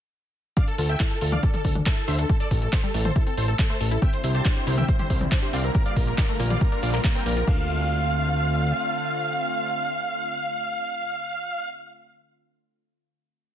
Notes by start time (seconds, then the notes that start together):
0.57 D4 D5 F5, kick, closed hi-hat
0.68 A4, closed hi-hat
0.78 D2 F4 A4, open hi-hat
0.89 A4 E5 G5, closed hi-hat
1.00 E4 A4, kick, clap, closed hi-hat
1.11 A4, closed hi-hat
1.21 D2 F4 A4, open hi-hat
1.32 D4 D5 F5, closed hi-hat, mid tom
1.43 A4 D5, kick, closed hi-hat
1.54 A4, closed hi-hat, mid tom
1.65 D2 D4 A4, kick, open hi-hat
1.75 D4, closed hi-hat, mid tom
1.86 E4 A4, kick, clap, closed hi-hat
1.97 A4, closed hi-hat
2.08 D2 D4 C5 E5, open hi-hat
2.19 D4 A4, closed hi-hat
2.29 A4, kick, closed hi-hat
2.40 A4 D5, closed hi-hat
2.51 A1 A3 A4, kick, open hi-hat
2.62 A3 A4, closed hi-hat
2.73 A4 C5, kick, clap, closed hi-hat
2.83 G3 A4, closed hi-hat
2.94 A1 A3 A4, open hi-hat
3.05 A3 A4 C5, closed hi-hat, mid tom
3.16 E4 A4, kick, closed hi-hat
3.27 C4 A4, closed hi-hat
3.37 A1 A3 A4 C5, open hi-hat
3.48 A4, closed hi-hat
3.59 A3 A4, kick, clap, closed hi-hat
3.70 A3 A4 C5, closed hi-hat
3.81 A1 A3 A4, open hi-hat
3.91 E4 A4, closed hi-hat
4.02 D3 G3 C4 E4 E5 G5, kick, closed hi-hat, shaker
4.13 C5, closed hi-hat, shaker
4.24 C2 D3 G3 C4 E4 C5, open hi-hat, shaker
4.35 G4 C5 A5, closed hi-hat, shaker
4.45 D3 G3 C4 D4 E4 C5, kick, clap, closed hi-hat, shaker
4.56 D3 G3 C4 E4 G4 C5, closed hi-hat, shaker
4.67 C2 E4 C5, open hi-hat, shaker
4.78 D3 G3 C4 E4 E5 G5, closed hi-hat, mid tom, shaker
4.88 D3 G3 C4 E4 C5, kick, closed hi-hat, shaker
4.99 G4 C5, closed hi-hat, mid tom, shaker
5.10 C2 D3 G3 C4 E4 C5, kick, open hi-hat, shaker
5.21 C4, closed hi-hat, mid tom, shaker
5.31 D3 G3 C4 D4 E4 C5, kick, clap, closed hi-hat, shaker
5.42 D3 G3 C4 E4 G4 C5, closed hi-hat, shaker
5.53 C2 C4 D5 F5, open hi-hat, shaker
5.64 D3 G3 C4 E4 A#4, closed hi-hat, shaker
5.75 D3 G3 A#3 F4 A#4, kick, closed hi-hat, shaker
5.86 D5 F5, closed hi-hat, shaker
5.96 A#1 D3 G3 A#3 F4 A#4, kick, open hi-hat, shaker
6.07 A#3 A#4, closed hi-hat, shaker
6.18 D3 G3 A#3 F4 A#4 D5, kick, clap, closed hi-hat, shaker
6.28 D3 G3 A3 A#3 F4 A#4, closed hi-hat, shaker
6.39 A#1 A#3 A#4, open hi-hat, shaker
6.50 D3 G3 A#3 F4 D5 F5, closed hi-hat, mid tom, shaker
6.61 D3 G3 A#3 F4 A#4, kick, closed hi-hat, shaker
6.72 D4 A#4, closed hi-hat, shaker
6.82 A#1 D3 G3 A#3 F4 D5 F5, open hi-hat, shaker
6.93 A#4, clap, closed hi-hat, shaker
7.04 D3 G3 A#3 F4 A#4, kick, clap, closed hi-hat, shaker
7.15 D3 G3 A#3 C4 F4 A#4 G5, closed hi-hat, shaker
7.26 A#1 A#3 A#4, open hi-hat, shaker
7.36 D3 G3 A#3 F4 A#4, closed hi-hat, shaker
7.47 D2 D3 A3 C4 D4 F4 F5, kick, crash